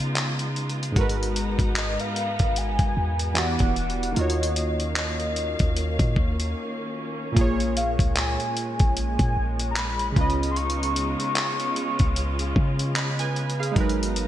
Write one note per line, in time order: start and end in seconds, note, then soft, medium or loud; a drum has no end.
0.00 0.50 C#3 medium
0.00 0.92 C#3 loud
0.00 0.93 C#3 medium
0.00 0.51 G#3 medium
0.00 3.32 G#3 medium
0.00 0.93 B3 medium
0.00 0.52 D#4 medium
0.00 0.93 D#4 medium
0.00 0.54 F4 medium
0.00 0.93 F4 medium
0.00 0.55 B4 medium
0.16 clap loud
0.16 closed hi-hat medium
0.39 closed hi-hat medium
0.56 closed hi-hat soft
0.69 closed hi-hat medium
0.83 closed hi-hat medium
0.92 3.30 G#2 medium
0.92 3.31 G#3 medium
0.96 1.57 G#1 loud
0.96 3.34 B3 medium
0.96 3.34 D#4 medium
0.96 3.32 F#4 medium
0.96 3.33 A#4 medium
0.96 3.34 A#5 medium
0.96 kick loud
0.96 closed hi-hat medium
1.01 3.35 B4 medium
1.09 closed hi-hat medium
1.23 closed hi-hat medium
1.36 closed hi-hat medium
1.59 1.98 G#1 loud
1.59 kick loud
1.59 closed hi-hat soft
1.76 1.98 D#5 medium
1.76 clap loud
1.76 closed hi-hat medium
2.00 2.59 F5 loud
2.00 closed hi-hat soft
2.16 closed hi-hat medium
2.39 2.78 G#1 loud
2.39 kick loud
2.39 closed hi-hat medium
2.56 3.40 G#5 loud
2.56 closed hi-hat medium
2.79 2.95 G#1 loud
2.79 kick loud
2.79 closed hi-hat soft
2.97 3.57 E2 loud
3.19 closed hi-hat medium
3.34 4.15 E3 medium
3.34 4.16 E3 medium
3.34 4.15 G3 medium
3.34 4.16 B3 medium
3.34 4.15 D4 medium
3.34 4.16 F#4 medium
3.34 4.17 G4 medium
3.34 clap loud
3.34 closed hi-hat medium
3.38 4.17 D5 medium
3.38 4.20 F#5 loud
3.59 4.15 E1 loud
3.59 kick medium
3.59 closed hi-hat soft
3.76 closed hi-hat soft
3.90 closed hi-hat medium
4.03 closed hi-hat medium
4.12 7.30 D#3 medium
4.12 7.31 A#3 medium
4.16 5.56 D#2 loud
4.16 7.33 D#3 medium
4.16 10.12 A#3 medium
4.16 10.12 C#4 medium
4.16 7.32 F4 medium
4.16 7.33 F#4 medium
4.16 4.97 D#5 loud
4.16 7.33 F5 medium
4.16 closed hi-hat medium
4.21 7.35 C#5 medium
4.30 closed hi-hat medium
4.43 closed hi-hat medium
4.56 closed hi-hat medium
4.80 closed hi-hat soft
4.96 6.13 D#5 medium
4.96 clap loud
4.96 closed hi-hat medium
5.20 closed hi-hat soft
5.36 closed hi-hat medium
5.59 5.98 D#2 loud
5.59 kick loud
5.59 closed hi-hat soft
5.77 closed hi-hat medium
5.99 6.16 A#2 loud
5.99 kick medium
5.99 closed hi-hat medium
6.16 6.55 D#2 loud
6.16 kick loud
6.40 closed hi-hat medium
7.32 10.10 A#2 medium
7.32 14.28 G#3 medium
7.32 10.11 A#3 medium
7.37 7.97 A#1 loud
7.37 10.12 F4 medium
7.37 10.14 G#4 medium
7.37 kick loud
7.37 closed hi-hat medium
7.41 10.15 C#5 medium
7.60 closed hi-hat soft
7.77 7.91 F5 medium
7.77 closed hi-hat medium
7.99 8.38 C#2 loud
7.99 kick medium
7.99 closed hi-hat medium
8.16 8.93 G#5 medium
8.16 clap loud
8.16 closed hi-hat medium
8.40 closed hi-hat soft
8.57 closed hi-hat medium
8.79 9.18 A#1 loud
8.79 kick loud
8.79 closed hi-hat soft
8.97 9.67 G#5 loud
8.97 closed hi-hat medium
9.19 9.36 A#2 loud
9.19 kick medium
9.19 closed hi-hat medium
9.37 10.13 A#1 loud
9.59 closed hi-hat medium
9.71 9.79 A#5 medium
9.76 10.51 B5 loud
9.76 clap loud
9.76 closed hi-hat medium
9.99 closed hi-hat medium
10.12 13.30 C#3 medium
10.12 13.31 C#4 medium
10.16 11.16 C#2 loud
10.16 13.73 C#3 medium
10.16 13.73 B3 medium
10.16 11.75 D#4 medium
10.16 13.32 F4 medium
10.16 13.73 F4 medium
10.16 12.93 B4 medium
10.16 kick loud
10.16 closed hi-hat soft
10.21 12.95 D#5 medium
10.30 closed hi-hat medium
10.43 closed hi-hat medium
10.51 10.58 C6 medium
10.56 11.20 C#6 loud
10.56 closed hi-hat medium
10.70 closed hi-hat medium
10.83 closed hi-hat medium
10.96 closed hi-hat medium
11.20 12.76 C#6 loud
11.20 closed hi-hat soft
11.36 clap loud
11.36 closed hi-hat medium
11.60 closed hi-hat soft
11.76 13.74 C#4 medium
11.76 closed hi-hat medium
11.99 12.54 C#2 loud
11.99 kick loud
11.99 closed hi-hat soft
12.16 closed hi-hat medium
12.39 closed hi-hat soft
12.56 13.72 C#3 loud
12.56 kick loud
12.79 closed hi-hat medium
12.96 13.18 D#5 medium
12.96 13.18 B5 medium
12.96 clap loud
12.96 closed hi-hat medium
13.19 13.58 B4 medium
13.19 13.57 G#5 medium
13.19 closed hi-hat medium
13.36 closed hi-hat soft
13.50 closed hi-hat medium
13.60 13.98 G#4 medium
13.60 13.98 F5 medium
13.60 closed hi-hat medium
13.72 14.28 G#3 medium
13.72 14.28 D#4 medium
13.76 14.28 G#1 loud
13.76 14.28 F#3 medium
13.76 14.28 B3 medium
13.76 14.28 D#4 medium
13.76 14.28 A#4 medium
13.76 14.28 A#5 medium
13.76 kick loud
13.76 closed hi-hat medium
13.80 14.28 B4 medium
13.89 closed hi-hat medium
14.03 closed hi-hat medium
14.16 closed hi-hat medium